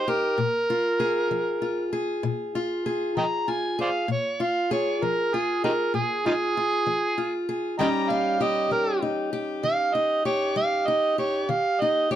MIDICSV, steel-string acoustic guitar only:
0, 0, Header, 1, 2, 480
1, 0, Start_track
1, 0, Tempo, 616016
1, 304, Time_signature, 12, 3, 24, 8
1, 9471, End_track
2, 0, Start_track
2, 0, Title_t, "Steel-string acoustic guitar"
2, 0, Program_c, 0, 25
2, 0, Note_on_c, 0, 63, 60
2, 59, Note_on_c, 0, 67, 68
2, 275, Note_off_c, 0, 63, 0
2, 294, Note_on_c, 0, 46, 72
2, 302, Note_off_c, 0, 67, 0
2, 545, Note_on_c, 0, 65, 62
2, 730, Note_off_c, 0, 46, 0
2, 777, Note_on_c, 0, 68, 70
2, 1019, Note_on_c, 0, 53, 62
2, 1257, Note_off_c, 0, 65, 0
2, 1260, Note_on_c, 0, 65, 57
2, 1453, Note_off_c, 0, 53, 0
2, 1498, Note_off_c, 0, 68, 0
2, 1501, Note_on_c, 0, 68, 69
2, 1739, Note_on_c, 0, 46, 78
2, 1979, Note_off_c, 0, 65, 0
2, 1988, Note_on_c, 0, 65, 61
2, 2173, Note_off_c, 0, 46, 0
2, 2218, Note_off_c, 0, 68, 0
2, 2228, Note_on_c, 0, 68, 64
2, 2468, Note_on_c, 0, 53, 66
2, 2701, Note_off_c, 0, 65, 0
2, 2710, Note_on_c, 0, 65, 58
2, 2897, Note_off_c, 0, 53, 0
2, 2941, Note_off_c, 0, 68, 0
2, 2951, Note_on_c, 0, 68, 64
2, 3157, Note_off_c, 0, 65, 0
2, 3158, Note_off_c, 0, 68, 0
2, 3180, Note_on_c, 0, 46, 70
2, 3428, Note_on_c, 0, 65, 61
2, 3613, Note_off_c, 0, 46, 0
2, 3670, Note_on_c, 0, 68, 70
2, 3914, Note_on_c, 0, 53, 65
2, 4145, Note_off_c, 0, 65, 0
2, 4160, Note_on_c, 0, 65, 62
2, 4340, Note_off_c, 0, 53, 0
2, 4386, Note_off_c, 0, 68, 0
2, 4396, Note_on_c, 0, 68, 69
2, 4627, Note_on_c, 0, 46, 72
2, 4869, Note_off_c, 0, 65, 0
2, 4878, Note_on_c, 0, 65, 58
2, 5057, Note_off_c, 0, 46, 0
2, 5110, Note_off_c, 0, 65, 0
2, 5121, Note_on_c, 0, 65, 57
2, 5349, Note_on_c, 0, 53, 66
2, 5583, Note_off_c, 0, 65, 0
2, 5592, Note_on_c, 0, 65, 55
2, 5778, Note_off_c, 0, 53, 0
2, 5825, Note_off_c, 0, 68, 0
2, 5834, Note_on_c, 0, 68, 59
2, 6039, Note_off_c, 0, 65, 0
2, 6040, Note_off_c, 0, 68, 0
2, 6068, Note_on_c, 0, 51, 72
2, 6072, Note_on_c, 0, 55, 57
2, 6080, Note_on_c, 0, 61, 61
2, 6082, Note_on_c, 0, 63, 56
2, 6089, Note_on_c, 0, 67, 65
2, 6310, Note_off_c, 0, 63, 0
2, 6313, Note_on_c, 0, 63, 66
2, 6498, Note_off_c, 0, 51, 0
2, 6546, Note_off_c, 0, 67, 0
2, 6549, Note_on_c, 0, 67, 74
2, 6785, Note_off_c, 0, 55, 0
2, 6788, Note_on_c, 0, 55, 61
2, 7028, Note_off_c, 0, 63, 0
2, 7031, Note_on_c, 0, 63, 59
2, 7218, Note_off_c, 0, 55, 0
2, 7265, Note_off_c, 0, 67, 0
2, 7268, Note_on_c, 0, 67, 67
2, 7507, Note_on_c, 0, 51, 76
2, 7742, Note_off_c, 0, 63, 0
2, 7751, Note_on_c, 0, 63, 59
2, 7938, Note_off_c, 0, 51, 0
2, 7980, Note_off_c, 0, 67, 0
2, 7989, Note_on_c, 0, 67, 68
2, 8227, Note_on_c, 0, 55, 71
2, 8469, Note_off_c, 0, 63, 0
2, 8477, Note_on_c, 0, 63, 62
2, 8659, Note_off_c, 0, 55, 0
2, 8703, Note_off_c, 0, 67, 0
2, 8712, Note_on_c, 0, 67, 62
2, 8923, Note_off_c, 0, 63, 0
2, 8926, Note_off_c, 0, 61, 0
2, 8952, Note_on_c, 0, 51, 74
2, 9209, Note_on_c, 0, 63, 64
2, 9381, Note_off_c, 0, 51, 0
2, 9425, Note_off_c, 0, 67, 0
2, 9434, Note_on_c, 0, 67, 72
2, 9471, Note_off_c, 0, 63, 0
2, 9471, Note_off_c, 0, 67, 0
2, 9471, End_track
0, 0, End_of_file